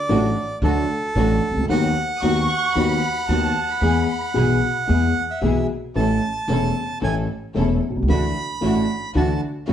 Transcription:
Already playing: bandoneon D5
0.09 upright piano A1 A2 F#3 A3 D4 A4, upright bass A1, string section A3 D4 F#4
0.62 upright bass D2, upright piano D2 D3 F#3 A3 D4 A4, string section A3 D4 F#4, bandoneon A4
1.15 upright bass A1, upright piano A1 A2 F#3 A3 D4 A4, string section A3 D4 F#4
1.50 upright piano C2, upright bass C2
1.56 upright bass C#2, upright piano C#2
1.62 upright piano D2, upright bass D2
1.69 upright bass D#2, upright piano D#2 D#3 F#3 B3 F#4, string section B3 D#4 F#4, bandoneon F#5
2.16 violin section D#6
2.22 upright bass D#2, upright piano D#2 D#3 F#3 B3 F#4, string section B3 D#4 F#4, violin section C#6
2.74 upright bass D#2, upright piano D#2 D#3 F#3 B3 F#4, string section B3 D#4 F#4, violin section B5
3.29 upright bass D#2, upright piano D#2 D#3 F#3 B3 F#4, string section B3 D#4 F#4, violin section A5
3.69 violin section B5
3.81 upright bass E2, upright piano E2 E3 G#3 B3 G#4, string section B3 E4 G#4
4.34 upright piano B1 B2 E3 G#3 B3 G#4, upright bass B1, string section B3 E4 G#4
4.87 upright piano E2 E3 G#3 B3 G#4, upright bass E2, string section B3 E4 G#4
5.31 bandoneon E5
5.41 upright bass B1, upright piano B1 B2 E3 G#3 B3 G#4, string section B3 E4 G#4
5.95 upright bass A1, upright piano A1 A2 E3 A3 C#4 A4, string section C#4 E4 A4, bandoneon A5
6.48 upright bass E1, upright piano E1 E2 E3 A3 C#4 A4, string section C#4 E4 A4
7.02 upright piano A1 A2 E3 A3 C#4 A4, upright bass A1, string section C#4 E4 A4, bandoneon G#5
7.54 upright piano E1 E2 E3 A3 C#4 A4, upright bass E1, string section C#4 E4 A4
7.90 upright piano B1, upright bass B1
7.96 upright bass C2, upright piano C2
8.02 upright piano C#2, upright bass C#2
8.08 upright piano D2 D3 E3 A3 D4 F#4, upright bass D2, string section D4 E4 F#4, bandoneon B5
8.61 upright piano A1 A2 E3 A3 D4 F#4, upright bass A1, string section D4 E4 F#4
9.15 upright piano D2 D3 E3 A3 D4 F#4, upright bass D2, string section D4 E4 F#4, bandoneon A5
9.67 upright piano A1 A2 E3 A3 D4 F#4, upright bass A1, string section D4 E4 F#4

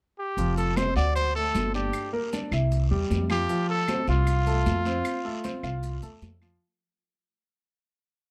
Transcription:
0.19 trumpet G4
0.37 upright bass F1, grand piano F3 F4, high conga, long guiro, maracas
0.58 trumpet A4, high conga, maracas
0.76 grand piano C4 C5, trumpet C5, high conga, short guiro, claves, maracas
0.95 upright bass D2, grand piano F#4 F#5, trumpet D5, high conga, short guiro, maracas
1.15 trumpet C5, high conga, long guiro, claves, maracas
1.35 grand piano A3 A4, trumpet A4, high conga
1.55 upright bass G1, high conga, short guiro, maracas
1.74 grand piano D4 D5, trumpet G4, short guiro, maracas
1.93 high conga, long guiro, claves, maracas
2.13 grand piano A#3 A#4, high conga
2.33 grand piano D4 D5, high conga, short guiro, maracas
2.51 upright bass C2, grand piano E4 E5, short guiro, claves, maracas
2.72 high conga, long guiro, maracas
2.91 upright bass E2, grand piano G3 G4, high conga
3.10 upright bass F2, high conga, short guiro, maracas
3.29 grand piano F3 F4, trumpet G4, high conga, short guiro, claves, maracas
3.49 grand piano F3 F4, high conga, long guiro, maracas
3.70 trumpet A4, high conga
3.88 grand piano C4 C5, high conga, short guiro, claves, maracas
4.07 upright bass C2, grand piano F4 F5, trumpet F4, high conga, short guiro, maracas
4.27 high conga, long guiro, claves, maracas
4.46 grand piano A3 A4, high conga, maracas
4.66 upright bass F2, high conga, short guiro, maracas
4.85 grand piano C4 C5, short guiro, maracas
5.05 high conga, long guiro, claves, maracas
5.25 grand piano A3 A4, high conga
5.44 grand piano C4 C5, high conga, short guiro, maracas
5.63 upright bass C2, grand piano F4 F5, short guiro, claves, maracas
5.83 high conga, long guiro, maracas
6.02 upright bass E2, grand piano A3 A4, high conga, maracas
6.22 upright bass F2, high conga, short guiro, maracas
6.41 grand piano F3 F4, high conga, short guiro, claves, maracas

